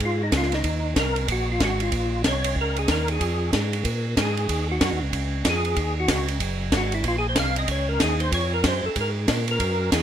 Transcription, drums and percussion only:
0.00 kick, ride
0.32 kick, snare, hi-hat pedal, ride
0.42 snare
0.52 snare, ride
0.64 kick, ride
0.96 kick, snare, hi-hat pedal, ride
1.16 ride
1.28 kick, ride
1.60 kick, snare, hi-hat pedal, ride
1.80 ride
1.92 kick, ride
2.24 kick, snare, hi-hat pedal, ride
2.44 ride
2.56 kick
2.76 ride
2.88 kick, snare, hi-hat pedal, ride
3.08 ride
3.20 kick, ride
3.53 kick, snare, hi-hat pedal, ride
3.73 ride
3.85 kick, ride
4.17 kick, snare, hi-hat pedal, ride
4.37 ride
4.49 kick, ride
4.81 kick, snare, hi-hat pedal, ride
5.13 kick, ride
5.45 kick, snare, hi-hat pedal, ride
5.65 ride
5.76 kick, ride
6.08 kick, snare, hi-hat pedal, ride
6.28 ride
6.40 kick, ride
6.72 kick, snare, hi-hat pedal, ride
6.92 ride
7.04 kick, ride
7.36 kick, snare, hi-hat pedal, ride
7.56 ride
7.68 kick, ride
8.00 kick, snare, hi-hat pedal, ride
8.20 ride
8.32 kick, ride
8.64 kick, snare, hi-hat pedal, ride
8.96 kick, ride
9.28 kick, snare, hi-hat pedal, ride
9.48 ride
9.60 kick, ride
9.92 kick, snare, hi-hat pedal, ride

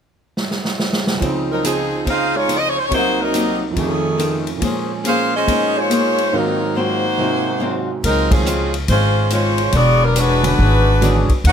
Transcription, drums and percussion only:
0.37 snare
0.51 snare
0.65 snare
0.79 snare
0.93 snare
1.07 snare
1.22 kick, ride
1.64 hi-hat pedal, ride
2.07 kick, ride
2.49 hi-hat pedal, ride
2.91 kick, ride
3.34 hi-hat pedal, ride
3.76 kick, ride
4.19 hi-hat pedal, ride
4.47 ride
4.62 kick, ride
5.05 hi-hat pedal, ride
5.48 kick, ride
5.91 hi-hat pedal, ride
6.18 ride
8.04 kick, ride
8.31 kick, ride
8.46 hi-hat pedal
8.74 ride
8.88 kick, ride
9.30 hi-hat pedal, ride
9.58 ride
9.72 kick, ride
10.16 hi-hat pedal, ride
10.44 ride
10.59 kick
11.02 hi-hat pedal, ride
11.29 kick, ride
11.44 kick, ride

